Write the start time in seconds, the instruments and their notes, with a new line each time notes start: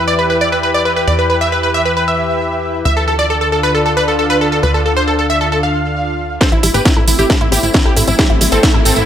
Already playing: analog synth bass E2, analog synth pad E3 E4 G4 B4
0.08 supersaw synth D5
0.19 supersaw synth B4
0.30 supersaw synth B4
0.41 supersaw synth D5
0.52 supersaw synth B4
0.63 supersaw synth B4
0.74 supersaw synth D5
0.85 supersaw synth B4
0.96 supersaw synth B4
1.08 analog synth bass E2, supersaw synth D5
1.19 supersaw synth B4
1.30 supersaw synth B4
1.41 supersaw synth E5
1.52 supersaw synth B4
1.63 supersaw synth B4
1.74 supersaw synth E5
1.85 supersaw synth B4
1.97 supersaw synth B4
2.08 supersaw synth E5
2.85 analog synth bass D2, analog synth pad D3 D4 F4, supersaw synth E5
2.97 supersaw synth A4
3.08 supersaw synth A4
3.19 supersaw synth D5
3.30 supersaw synth A4
3.41 supersaw synth A4
3.52 supersaw synth A4
3.63 supersaw synth B4
3.75 supersaw synth A4
3.86 supersaw synth A4
3.97 supersaw synth B4
4.08 supersaw synth A4
4.19 supersaw synth A4
4.30 supersaw synth B4
4.41 supersaw synth A4
4.52 supersaw synth A4
4.63 analog synth bass D2, supersaw synth B4
4.74 supersaw synth A4
4.86 supersaw synth A4
4.97 supersaw synth C5
5.08 supersaw synth A4
5.19 supersaw synth A4
5.30 supersaw synth E5
5.41 supersaw synth A4
5.52 supersaw synth A4
5.63 supersaw synth F5
6.41 analog synth pad A3 C4 E4, synth arpeggio sound A3, supersaw synth A4 C5, synth pluck C5, kick, snare, closed hi-hat, tambourine, riser
6.52 analog synth bass A1, supersaw synth E4, synth pluck E4, synth arpeggio sound E4, closed hi-hat
6.63 analog synth bass A1, synth arpeggio sound G3, supersaw synth E4, synth pluck E4, open hi-hat, tambourine
6.74 analog synth bass A1, synth arpeggio sound B3, supersaw synth G4 B4, synth pluck B4, closed hi-hat, tambourine
6.85 synth pluck E4, supersaw synth E4, kick, snare, closed hi-hat, tambourine
6.97 analog synth bass A1, supersaw synth E4, synth pluck E4, synth arpeggio sound A4
7.07 analog synth bass A1, synth pluck E4, supersaw synth E4, open hi-hat, tambourine
7.19 analog synth bass A1, supersaw synth E4 G4, synth pluck G4, closed hi-hat, tambourine
7.30 synth arpeggio sound A3, synth pluck E4, supersaw synth E4, kick, snare, closed hi-hat, tambourine
7.41 analog synth bass A1, synth pluck E4, synth arpeggio sound E4, supersaw synth E4, closed hi-hat
7.52 analog synth bass A1, synth arpeggio sound B3, supersaw synth E4 G4, synth pluck G4, open hi-hat, tambourine
7.63 analog synth bass A1, synth pluck E4, supersaw synth E4, closed hi-hat, tambourine
7.74 synth arpeggio sound E3, synth pluck E4, supersaw synth E4, kick, snare, closed hi-hat, tambourine
7.85 analog synth bass B1, supersaw synth E4 G4, synth pluck G4, synth arpeggio sound A4
7.96 analog synth bass A1, synth arpeggio sound A3, synth pluck E4, supersaw synth E4, open hi-hat, tambourine
8.07 analog synth bass A1, synth arpeggio sound C4, synth pluck E4, supersaw synth E4, closed hi-hat, tambourine
8.19 synth arpeggio sound A3, supersaw synth E4 G4, synth pluck G4, kick, snare, closed hi-hat
8.30 analog synth bass A1, synth pluck E4, synth arpeggio sound E4, supersaw synth E4, closed hi-hat
8.41 analog synth bass A1, synth arpeggio sound G3, synth pluck E4, supersaw synth E4, open hi-hat, tambourine
8.52 analog synth bass A1, synth arpeggio sound B3, supersaw synth C4 A4, synth pluck A4, closed hi-hat, tambourine
8.63 synth pluck E4, supersaw synth E4, kick, snare, closed hi-hat, tambourine
8.74 analog synth bass A1, synth pluck E4, supersaw synth E4, synth arpeggio sound A4
8.85 analog synth bass A1, supersaw synth C4 A4, synth pluck A4, open hi-hat, tambourine
8.96 analog synth bass A1, synth pluck E4, supersaw synth E4, closed hi-hat, tambourine